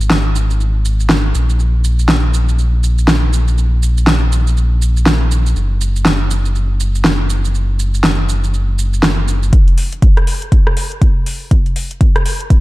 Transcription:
Already playing: sub bass G#1
0.01 shaker
0.10 snare, shaker
0.36 shaker
0.51 shaker
0.60 shaker
0.85 shaker
1.00 shaker
1.09 snare, shaker
1.35 sub bass A#1, shaker
1.50 shaker
1.60 shaker
1.84 shaker
1.99 shaker
2.08 snare, shaker
2.34 shaker
2.49 shaker
2.59 shaker
2.83 shaker
2.98 shaker
3.08 snare, shaker
3.33 shaker
3.48 shaker
3.58 shaker
3.83 shaker
3.98 shaker
4.07 snare, shaker
4.32 shaker
4.47 shaker
4.57 shaker
4.82 shaker
4.97 shaker
5.06 snare, shaker
5.31 shaker
5.46 shaker
5.56 sub bass F#1, shaker
5.81 shaker
5.96 shaker
6.05 snare, shaker
6.31 shaker
6.46 shaker
6.55 shaker
6.80 shaker
6.95 shaker
7.04 snare, shaker
7.30 shaker
7.45 shaker
7.55 shaker
7.79 shaker
7.94 shaker
8.04 snare, shaker
8.29 shaker
8.44 shaker
8.54 shaker
8.79 shaker
8.93 shaker
9.03 snare, shaker
9.28 shaker
9.43 shaker
9.53 kick, closed hi-hat
9.68 closed hi-hat
9.78 open hi-hat
9.92 closed hi-hat
10.02 kick, closed hi-hat
10.17 cross-stick, closed hi-hat
10.27 open hi-hat
10.42 closed hi-hat
10.52 kick, closed hi-hat
10.67 cross-stick
10.77 open hi-hat
10.92 closed hi-hat
11.02 kick, closed hi-hat
11.26 open hi-hat
11.51 kick, closed hi-hat
11.66 closed hi-hat
11.76 open hi-hat
11.91 closed hi-hat
12.01 kick, closed hi-hat
12.16 cross-stick, closed hi-hat
12.26 open hi-hat
12.40 closed hi-hat
12.50 kick, closed hi-hat

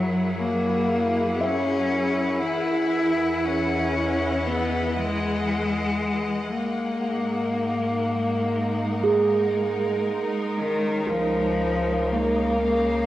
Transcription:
Already playing: synth drone F#2, cello F#3, string section F#3 E4 G#4 A#4 F#5
0.39 cello A#3
1.41 cello C#4, handpan E5
2.43 synth drone E2, string section E3, cello E4
3.45 cello C#4
3.63 string section D#5
4.47 cello B3
4.96 cello G#3
6.50 synth drone G#2, string section G#3, cello A#3
6.67 string section D#4
6.93 string section A#4
9.04 handpan G#4
10.56 synth drone C#2, string section C#3, cello D#3
11.07 cello F3, handpan A#4
12.05 string section F5
12.12 cello A#3
12.62 cello A#3

